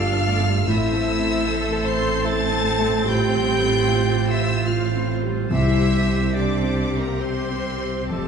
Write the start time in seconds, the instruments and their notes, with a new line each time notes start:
Already playing: double bass section G1, grand piano G2 A3 D4 G4 A4 D5, cello section G2, french horn section F4, viola section A4, flute F5, violin section F5 F6
0.07 viola section D4
0.13 grand piano D4
0.27 viola section A3, clarinet A4, oboe D5
0.40 grand piano A3
0.48 viola section G3
0.67 double bass section A1, cello section A2, grand piano A2, viola section C4 A4, french horn section E4, clarinet A4, oboe C5, flute E5, violin section E5 E6
0.93 grand piano A3
1.19 grand piano C4
1.45 grand piano E4
1.72 grand piano A4
1.85 french horn section C5, flute C6, violin section C6 C7
1.98 grand piano C5
2.25 grand piano E4, french horn section A4, flute A5, violin section A5 A6
2.53 grand piano C4
2.80 grand piano A3
3.05 grand piano A2, viola section F4, french horn section G4, flute G5, violin section G5 G6
3.10 clarinet F4
3.34 grand piano G3
3.62 grand piano C4
3.87 grand piano F4
4.14 grand piano G4
4.28 french horn section F4, flute E5, violin section E5 E6
4.42 grand piano C5
4.68 grand piano F4, french horn section F4, flute F5, violin section F6
4.73 violin section F5
4.95 grand piano C4
5.23 grand piano G3
5.50 grand piano C2, double bass section C2, timpani C3, cello section C3, viola section C4 G4, french horn section E4, clarinet G4, oboe C5, flute E5, violin section E5 E6
5.78 grand piano G3
6.06 grand piano C4
6.33 french horn section D4, grand piano G4, clarinet G4, oboe C5, flute D5, violin section D5 D6
6.62 grand piano C4
6.98 french horn section A#3, flute A#4, violin section A#4 A#5
7.20 french horn section C4, grand piano G4, clarinet G4, oboe C5, flute C5, violin section C5 C6
7.50 grand piano C4
7.78 grand piano G3
8.08 double bass section F1, grand piano F2, timpani F2, cello section F2, french horn section A3, clarinet G4, violin section A4 A5, flute A4, oboe C5
8.16 timpani F2
8.24 timpani F2